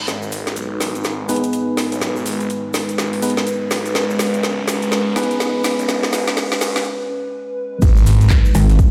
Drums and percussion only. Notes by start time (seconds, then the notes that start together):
0.08 snare, closed hi-hat, shaker
0.22 shaker
0.32 open hi-hat, shaker
0.47 snare, closed hi-hat, shaker
0.56 closed hi-hat, shaker
0.81 snare, open hi-hat, shaker
0.95 closed hi-hat, shaker
1.04 snare, closed hi-hat, shaker
1.29 open hi-hat, shaker
1.36 closed hi-hat
1.43 closed hi-hat, shaker
1.53 closed hi-hat, shaker
1.77 snare, open hi-hat, shaker
1.92 closed hi-hat, shaker
2.02 snare, closed hi-hat, shaker
2.16 shaker
2.26 open hi-hat, shaker
2.41 closed hi-hat, shaker
2.50 closed hi-hat, shaker
2.74 snare, open hi-hat, shaker
2.89 closed hi-hat, shaker
2.98 snare, closed hi-hat, shaker
3.13 open hi-hat
3.22 open hi-hat, shaker
3.30 closed hi-hat
3.37 snare, closed hi-hat, shaker
3.47 closed hi-hat, shaker
3.71 snare, open hi-hat, shaker
3.86 closed hi-hat, shaker
3.95 snare, closed hi-hat, shaker
4.10 shaker
4.19 snare, open hi-hat, shaker
4.34 closed hi-hat, shaker
4.43 snare, closed hi-hat, shaker
4.68 snare, open hi-hat, shaker
4.82 closed hi-hat, shaker
4.92 snare, closed hi-hat, shaker
5.16 snare, open hi-hat, shaker
5.23 closed hi-hat
5.31 closed hi-hat, shaker
5.40 snare, closed hi-hat, shaker
5.64 snare, open hi-hat, shaker
5.79 closed hi-hat, shaker
5.89 snare, closed hi-hat, shaker
6.03 snare, shaker
6.13 snare, open hi-hat, shaker
6.28 snare, closed hi-hat, shaker
6.37 snare, closed hi-hat, shaker
6.52 snare, shaker
6.61 snare, open hi-hat, shaker
6.76 snare, closed hi-hat, shaker
7.82 kick, closed hi-hat, crash, shaker
7.97 closed hi-hat, shaker
8.06 snare, closed hi-hat, open hi-hat, shaker
8.21 snare, closed hi-hat, shaker
8.30 kick, snare, clap, closed hi-hat, shaker
8.45 shaker
8.55 closed hi-hat, open hi-hat, shaker
8.69 snare, closed hi-hat, shaker
8.79 kick, closed hi-hat, shaker